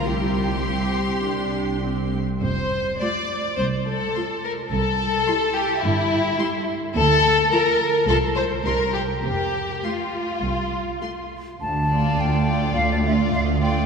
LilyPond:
<<
  \new Staff \with { instrumentName = "Violin section" } { \time 4/4 \key f \major \tempo 4 = 105 c'''2.~ c'''8 r8 | r4 c'''4 r4 c'''4 | r4 c'''4 r4 c'''4 | r4 bes''4 c'''4 c'''4 |
r4 c'''4 r4 c'''4 | \key d \minor r8 d''4 d''4 d''4 d''8 | }
  \new Staff \with { instrumentName = "Flute" } { \time 4/4 \key f \major r1 | r1 | r1 | r1 |
r1 | \key d \minor a''4 g''4 f''16 d''16 e''8 f''8 g''8 | }
  \new Staff \with { instrumentName = "Violin section" } { \time 4/4 \key f \major g'2.~ g'8 r8 | c''4 d''4 c''8 a'4 bes'8 | a'4. g'8 e'4. r8 | a'4 bes'4 a'8 c''8 bes'8 g'8 |
g'4 f'2~ f'8 r8 | \key d \minor r8 f'4 f'4 f'4 f'8 | }
  \new Staff \with { instrumentName = "Viola section" } { \time 4/4 \key f \major <g e'>4 c'4 d'4 c'8 a8 | r4 <a f'>4 r4 <a f'>4 | r4 <g e'>4 r4 <g e'>4 | r4 <f f'>4 <f f'>4 <g e'>4 |
r4 <a f'>4 r4 <a f'>4 | \key d \minor r8 a4 a4 a4 a8 | }
  \new Staff \with { instrumentName = "Cello section" } { \clef bass \time 4/4 \key f \major c,2.~ c,8 r8 | f,4 r4 c,4 r4 | c,4 r4 g,4 r4 | d,4 r4 c,4 c,4 |
f,4 r4 c,4 r4 | \key d \minor d,4 d,4 d,4 d,4 | }
  \new Staff \with { instrumentName = "Double bass section" } { \clef bass \time 4/4 \key f \major c,2.~ c,8 r8 | f,,4 r4 c,4 r4 | c,4 r4 g,,4 r4 | d,4 r4 c,4 c,4 |
f,,4 r4 c,4 r4 | \key d \minor d,4 d,4 d,4 d,4 | }
>>